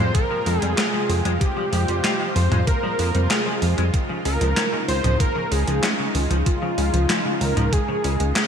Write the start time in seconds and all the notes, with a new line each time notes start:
Already playing: C3 G#3 F4 C5 G5
0.00 F2
0.14 F3 A#4, kick, closed hi-hat
0.30 F3 G3
0.46 F2 F3 G#3, open hi-hat
0.59 F2 G3 G#4, closed hi-hat
0.77 G3 F4 G#4, snare, clap, closed hi-hat
0.94 F3 G#3
1.09 F2 F3, open hi-hat
1.25 F2 G3 G#3, closed hi-hat
1.40 F3 G4 C5, kick, closed hi-hat
1.57 F3 G3
1.73 F2 F3 G#3, open hi-hat
1.88 F2 G3, closed hi-hat
2.04 G3 F4, snare, clap, closed hi-hat
2.20 F3 G#3
2.35 F2 F3 C5, open hi-hat
2.52 F2 G3 G#3, closed hi-hat, mid tom
2.67 F3 A#4, kick, closed hi-hat
2.83 F3 G3
2.99 F2 F3 G#3, open hi-hat
3.15 F2 G3, closed hi-hat
3.30 G3 F4 G#4, snare, clap, closed hi-hat
3.46 F3 G#3
3.62 F2 F3, open hi-hat
3.78 F2 G3 G#3, closed hi-hat
3.94 C#3 D#3 G#3 D#4, kick, closed hi-hat
4.09 C#3 F3
4.25 C#2 C#3 G#3 A#4, open hi-hat
4.41 C#2 F3, closed hi-hat
4.57 F3 C#4, snare, clap, closed hi-hat
4.73 C#3 G#3
4.88 C#2 D#3 C5, open hi-hat
5.04 C#2 F3, closed hi-hat, mid tom
5.20 D#3 A#4, kick, closed hi-hat
5.36 C#3 F3
5.51 C#2 C#3 G#3 G#4, open hi-hat
5.67 C#2 F3, closed hi-hat
5.83 F3 C#4, snare, clap, closed hi-hat
5.99 C#3 G#3
6.15 C#2 D#3, open hi-hat
6.30 C#2 F3, closed hi-hat
6.46 D#3 F4, kick, closed hi-hat
6.62 C#3 F3
6.78 C#2 C#3 G#3, open hi-hat
6.94 C#2 F3, closed hi-hat
7.09 F3 C#4, snare, clap, closed hi-hat
7.25 C#3 G#3
7.41 C#2 D#3 A#4, open hi-hat
7.57 C#2 F3, closed hi-hat, mid tom
7.73 D#3 G#4, kick, closed hi-hat
7.88 C#3 F3
8.04 C#2 C#3 C#4, open hi-hat
8.20 C#2 G#3, closed hi-hat
8.36 C#4 G#4, snare, clap, closed hi-hat